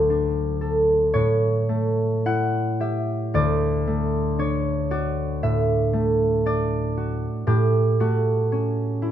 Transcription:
Already playing: D2 F#3 A4
0.10 D4
0.61 A4
1.14 A2 C#5
1.69 A3
2.26 E4 F#5
2.80 G4 E5
3.34 D2 D5
3.87 A3
4.39 D4 C#5
4.91 F#4 D5
5.43 A2 E5
5.93 A3
6.46 D4 D5
6.97 F#4
7.47 A2 G4
8.00 A3 F#4
8.52 C#4
9.02 E4

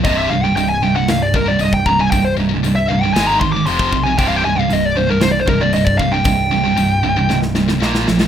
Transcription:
0.04 C1 C2 G2 C3 D#5, kick, open hi-hat
0.18 E5
0.30 C1 C2 G2 F5
0.44 C2 G2 G5
0.56 C1 C2 G2 G5, open hi-hat
0.69 G#5
0.82 C1 C2 G2 G5
0.96 C2 G2 F#5
1.08 C1 C2 G2 F5, snare, open hi-hat
1.22 D5
1.34 C1 C2 G2 A#4, kick
1.46 C2 G2 D5
1.59 C1 C2 G2 D#5, open hi-hat
1.63 C2 G2
1.73 G5, kick
1.86 C2 G2 A#5, kick
1.99 C2 G2 G#5
2.11 C1 C2 G2 G5, kick, open hi-hat
2.25 C5
2.37 C1 C2 G2
2.41 C2
2.49 C2 G2
2.54 C2 G2
2.63 C1 C2 G2, open hi-hat
2.75 E5
2.88 C1 C2 G2 F5
3.01 C2 G2 G5
3.14 G#1 G#2 D#3 G#3 G#5, snare, open hi-hat
3.27 A#5
3.40 G#2 D#3 C6, kick
3.52 D6
3.56 G#2 D#3
3.66 F1 F2 C3 F3 C6, open hi-hat
3.79 kick
3.92 B1 F2 C3, kick
4.04 F2 C3 G#5
4.18 C1 C2 G2 C3 G5, kick, open hi-hat
4.28 F5
4.36 G5
4.45 C1 C2 G2 G#5
4.56 C2 G2 F5
4.60 C2
4.70 C1 C2 G2 D#5, open hi-hat
4.85 D5
4.97 C1 C2 G2 C5
5.10 C2 G2 A#4
5.21 C1 C2 G2 C5, snare, open hi-hat
5.32 D5
5.39 C5
5.48 C1 C2 G2 A#4, kick
5.61 C2 G2 D5
5.73 C1 C2 G2 D#5, open hi-hat
5.86 D5, kick
5.98 C2 G2 F5, kick
6.12 C2 G2 G5
6.25 C1 C2 G2, kick, open hi-hat
6.51 C1 C2 G2
6.65 C2 G2
6.77 C1 C2 G2, open hi-hat
7.03 C1 C2 G2
7.16 C2 G2
7.29 C1 C2 G2, snare
7.42 snare
7.55 C2 G2, snare
7.68 C2 G2, snare
7.80 A#1 A#2 F3 A#3, snare
7.95 snare
8.08 A#1 A#2 F3, snare
8.20 A#2 F3, snare

